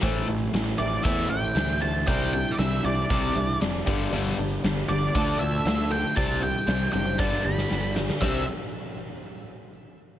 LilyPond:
<<
  \new Staff \with { instrumentName = "Lead electric guitar" } { \time 4/4 \key c \major \tempo 4 = 117 r4. d''8 e''8 g''4 a''8 | g''8 g''16. d''32 e''8 d''4. r4 | r4. d''4 e''4 g''8 | a''8 g''4 g''8 a''8 b''4 r8 |
e''8 r2. r8 | }
  \new Staff \with { instrumentName = "Steel-string acoustic guitar" } { \time 4/4 \key c \major <a, e a c' e'>8 <a c' e'>8 <e a c' e'>8 <a, e a c' e'>8 <e a c' e'>8 <a, e a c' e'>8 <e a c' e'>8 <a c' e'>8 | <c e g d' e'>8 <g d' e'>8 <e g d' e'>8 <c e g d' e'>8 <e g d' e'>8 <c e g d' e'>8 <e g d' e'>8 <g b d' g'>8 | <g b d' g'>8 <b d' g'>8 <g b d' g'>8 <g b d' g'>8 <d f a d' a'>8 <d f a d' a'>8 <f a d' a'>8 <a d' a'>8 | <c e c' d' g'>8 <c' d' g'>8 <e c' d' g'>8 <c e c' d' g'>8 <g b d' g'>8 <g b d' g'>8 <g b d' g'>8 <b d' g'>8 |
<c e c' d' g'>8 r2. r8 | }
  \new Staff \with { instrumentName = "Overdriven electric guitar" } { \clef bass \time 4/4 \key c \major <a, e a>8 <a, e>8 <a, e>8 <a, e>8 <a, e a>8 <a, e>8 <a, e>8 <a, e>8 | <c g c'>8 <c g>8 <c g>8 <c g>8 <c g c'>8 <c g>8 <c g>8 <g, d g>8 | <g, d g>8 <g, d>8 <g, d>8 <g, d>8 <d a d'>8 <d a>8 <d a>8 <d a>8 | <c g c'>8 <c g>8 <c g>8 <c g>8 <g, d g>8 <g, d>8 <g, d>8 <g, d>8 |
<c g c'>8 r2. r8 | }
  \new Staff \with { instrumentName = "Picked electric bass" } { \clef bass \time 4/4 \key c \major a,,8 a,,8 a,,8 a,,8 e,8 a,,8 d,4 | c,4 c,8 c,8 c,8 c,8 f,,8 g,,8 | g,,8 g,,8 g,,8 g,,8 d,8 d,8 d,4 | c,4 c,8 fis,,8 g,,8 g,,8 g,,4 |
c,8 r2. r8 | }
  \new DrumStaff \with { instrumentName = "Drums" } \drummode { \time 4/4 <hh bd>8 hh8 <hh sn>8 hh8 <hh bd>8 hh8 <hh sn>8 hh8 | <hh bd>16 sn16 hh8 <hh sn>8 hh8 <hh bd>8 hh8 <hh sn>8 <hh bd>8 | hh16 sn16 hh8 <hh sn>8 hh8 <hh bd>8 hh8 <hh sn>8 hh8 | <hh bd>8 hh8 <hh sn>8 hh8 <bd sn>16 sn8 sn16 sn8 sn16 sn16 |
<bd sn>4 r4 r4 r4 | }
>>